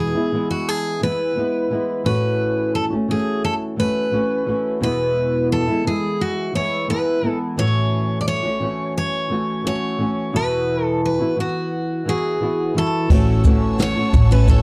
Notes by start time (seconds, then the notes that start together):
Already playing: E2 B2 E3 G#3 B3 E4
0.00 G#4
0.15 E3 G#3 B3 E4
0.32 E3 G#3 B3 E4
0.51 F#4
0.69 G#4
1.01 E3 G#3 B3 E4 B4
1.35 E3 G#3 B3 E4
1.70 E3 G#3 B3 E4
2.04 A2 E3 A3 C#4 F#4 B4
2.75 A4
2.90 A3 C#4 F#4
3.08 E3 A3 C#4 F#4 G#4
3.45 A4
3.76 E3 A3 C#4 F#4 B4
4.11 E3 A3 C#4 F#4
4.46 E3 A3 C#4 F#4
4.81 E2 B2 E3 G#3 B3 E4 B4
5.52 A4
5.67 E3 G#3 B3 E4
5.84 E3 G#3 B3 E4 G#4
6.21 F#4
6.53 E3 G#3 B3 E4 C#5
6.88 E3 G#3 B3 E4 B4
7.22 E3 G#3 B3 E4
7.57 A2 E3 A3 C#4 F#4 C#5
8.21 D5
8.28 C#5
8.43 A3 C#4 F#4
8.60 E3 A3 C#4 F#4
8.98 C#5
9.30 E3 A3 C#4 F#4
9.64 E3 A3 C#4 F#4 C#5
9.98 E3 A3 C#4 F#4
10.33 E2 B2 E3 B3 E4 F#4 B4
10.84 A4
11.05 B4
11.19 E3 B3 E4 F#4
11.36 E3 B3 E4 F#4
11.40 F#4
12.05 E3 B3 E4 F#4 G#4
12.40 E3 B3 E4 F#4
12.74 E3 B3 E4 F#4 A4
13.09 A1 E3 A3 C#4 E4 F#4 C#5 F#5 A5 E6, kick, crash
13.44 A2 E3 A3 C#4 F#4, kick, shaker
13.79 C#5, snare, shaker
13.96 A3 C#4 F#4
14.13 A1, kick, shaker
14.30 A3 C#4 F#4 B4, shaker
14.47 A3 C#4 E4 F#4 A4 C#5, kick, shaker